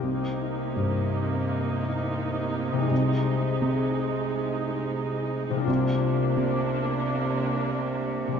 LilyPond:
<<
  \new Staff \with { instrumentName = "Harp" } { \time 4/4 \key c \minor \tempo 4 = 86 <c bes ees' g'>1 | <c aes ees' aes'>1 | <c bes d' f'>1 | }
  \new Staff \with { instrumentName = "Viola section" } { \time 4/4 \key c \minor << { ees'1~ | ees'1 | d'1 | } \\ { bes1 | aes1 | bes1 | } >> }
  \new Staff \with { instrumentName = "Cello section" } { \clef bass \time 4/4 \key c \minor c1~ | c1 | c1 | }
  \new Staff \with { instrumentName = "Felt piano" } { \clef bass \time 4/4 \key c \minor c,4 g,2. | c,4 c2. | c,4 c2. | }
>>